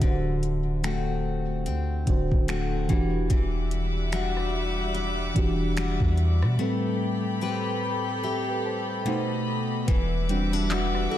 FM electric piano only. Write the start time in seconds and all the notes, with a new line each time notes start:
Already playing: G4 E5
0.00 D3 D4 F#4
0.05 C5
2.06 D3 D4 F#4
2.10 C5
2.88 E3 D4 F#4
2.93 G4
5.34 E3 D4 F#4
5.39 G4
6.58 A2 G3 C4
6.62 B4
8.24 G4 E5
8.49 B4 G5
8.66 C5 A5
8.90 B4 G5
9.05 B2 A3 D#4
9.09 C5
9.87 B4
10.29 G3 D4 F#4
11.11 A4